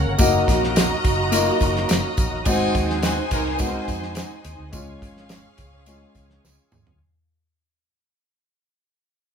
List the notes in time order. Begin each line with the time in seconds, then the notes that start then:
Already playing: C#3 A#3 C#4 A#4 F#5
0.05 G1
0.18 F#1 F#3 A#3 D#4 F#4 D#5 A#5, kick, closed hi-hat, tambourine
0.48 A#1, kick, snare, closed hi-hat, tambourine
0.64 snare
0.76 snare, closed hi-hat, tambourine
1.05 F#1, kick, closed hi-hat, tambourine
1.31 A#3 D#4 F4, closed hi-hat, tambourine
1.60 F#1, kick, closed hi-hat, tambourine
1.76 snare
1.89 F#1, snare, closed hi-hat, tambourine
2.17 A#1, kick, closed hi-hat, tambourine
2.33 A1
2.45 G#1 G#3 C4 D#4 F#4 G#4 C5 G#5, kick, closed hi-hat, tambourine
2.75 D#2, kick, snare, closed hi-hat, tambourine
2.90 snare
3.03 C4 D#4 F#4, snare, closed hi-hat, tambourine
3.31 C2 D#4 F#4 A#4, kick, closed hi-hat, tambourine
3.59 G#3 B3 F#4, kick, closed hi-hat, tambourine
3.66 C4
3.88 F2, kick, closed hi-hat, tambourine
4.03 snare
4.15 snare, closed hi-hat, tambourine
4.44 D#2, closed hi-hat, tambourine
4.59 D2
4.72 C#2 G#3 C#4 F4 G#4 F5, kick, closed hi-hat, tambourine
5.02 G#1, kick, closed hi-hat, tambourine
5.17 snare
5.29 snare, closed hi-hat, tambourine
5.58 C#2, kick, closed hi-hat, tambourine
5.86 G#3 C#4 F4, closed hi-hat, tambourine
6.15 C#2, kick, closed hi-hat, tambourine
6.30 snare
6.45 C#2, snare, tambourine
6.72 D#2, mid tom, tambourine
6.87 D2, floor tom